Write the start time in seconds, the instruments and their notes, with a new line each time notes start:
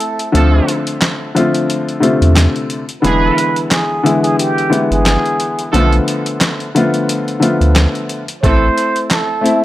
Already playing: grand piano A3 C4 E4, muted trumpet A4
0.00 closed hi-hat
0.19 closed hi-hat
0.32 sub bass D2, grand piano D3 F3 A3 C4 F4, horn section F3 A3 D4 A4, closed hi-hat
0.68 closed hi-hat
0.87 closed hi-hat
1.01 snare, clap, closed hi-hat
1.35 grand piano D3 F3 A3 C4 F4, closed hi-hat
1.54 closed hi-hat
1.70 closed hi-hat
1.89 closed hi-hat
2.00 grand piano C3 D3 A3 C4 F4, closed hi-hat
2.21 sub bass E2, closed hi-hat
2.36 snare, clap, closed hi-hat
2.56 closed hi-hat
2.70 closed hi-hat
2.89 closed hi-hat
3.02 sub bass E1, grand piano D3 E3 G#3 B3 E4, horn section E3 G#3 D4 G#4, muted trumpet B4, closed hi-hat
3.38 closed hi-hat
3.56 closed hi-hat
3.71 muted trumpet G#4, snare, clap, closed hi-hat
4.03 grand piano D3 E3 G#3 B3 E4, closed hi-hat
4.22 muted trumpet G#4, closed hi-hat
4.39 muted trumpet G4, closed hi-hat
4.58 closed hi-hat
4.69 grand piano D3 E3 G#3 B3 E4, closed hi-hat
4.91 sub bass G1, muted trumpet G#4, closed hi-hat
5.06 snare, clap, closed hi-hat
5.26 closed hi-hat
5.40 closed hi-hat
5.59 closed hi-hat
5.72 sub bass B1, grand piano D3 F3 A3 B3 F4, horn section F3 A3 D4 A4, closed hi-hat
5.93 closed hi-hat
6.08 closed hi-hat
6.26 closed hi-hat
6.41 snare, clap, closed hi-hat
6.60 closed hi-hat
6.75 grand piano D3 F3 A3 B3 F4, closed hi-hat
6.94 closed hi-hat
7.09 closed hi-hat
7.28 closed hi-hat
7.40 grand piano D3 F3 A3 B3 F4, closed hi-hat
7.61 sub bass D2, closed hi-hat
7.76 snare, clap, closed hi-hat
7.95 closed hi-hat
8.09 closed hi-hat
8.28 closed hi-hat
8.42 sub bass A1, horn section E3 A3 C4 A4, grand piano A3 C4 E4, muted trumpet C5, kick, closed hi-hat
8.78 closed hi-hat
8.96 closed hi-hat
9.10 muted trumpet A4, snare, clap, closed hi-hat
9.41 grand piano A3 C4 E4
9.46 closed hi-hat